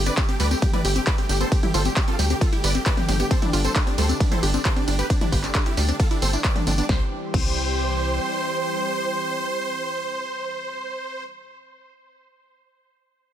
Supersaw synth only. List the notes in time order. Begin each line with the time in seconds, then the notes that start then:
0.06 B4 D5
0.17 G4
0.29 G4
0.40 B4 D5
0.51 G4
0.62 G4
0.74 B4 D5
0.85 G4
0.96 G4
1.07 B4 D5
1.18 G4
1.29 G4
1.41 A4 C5
1.52 G4
1.63 G4
1.74 A4 C5
1.86 G4
1.97 G4
2.08 F4 A4
2.19 G4
2.30 G4
2.41 F4 A4
2.53 G4
2.64 B4 D5
2.75 G4
2.86 B4 D5
2.98 G4
3.09 G4
3.20 G4
3.31 A4 C5
3.42 D4
3.53 D4
3.65 A4 C5
3.76 D4
3.87 D4
3.98 A4 C5
4.10 D4
4.21 D4
4.32 A4 C5
4.43 D4
4.54 D4
4.65 A4 C5
4.77 D4
4.88 D4
4.99 G4 B4
5.10 D4
5.21 D4
5.32 G4 B4
5.44 D4
5.55 D4
5.66 E4 G4
5.77 D4
5.89 D4
6.00 F4 A4
6.11 D4
6.22 A4 C5
6.33 D4
6.45 B4 D5
6.56 D4
6.67 D4
6.78 D4
6.89 C5
7.34 C5